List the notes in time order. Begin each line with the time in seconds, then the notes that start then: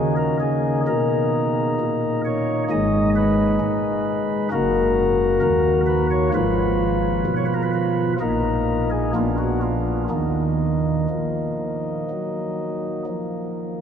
Already playing: C#3 A#3 D#4 G#4
0.17 A#4
0.40 G#4
0.87 B2 A#4
1.80 A#2
2.25 C#5
2.70 G#1 G#2 G#3 D#4 D#5
3.16 B4
3.61 G#3
4.51 F#1 F#2 A#3 F#4 A#4
5.42 D#2 A#4
5.87 B4
6.11 C#5
6.34 G#1 G#2 F3 F4 B4
7.26 B2
7.37 C#5
7.46 B4
7.54 A#4
7.63 B4
7.74 B4
8.20 A#1 A#2 A#3 D#4 A#4
8.90 G#4
9.15 A#1 A#2 B3 D4 F4
9.38 F#4
9.62 F4
10.10 D#2 D#3 A#3 D#4
11.10 F3
12.10 F#3
13.07 F3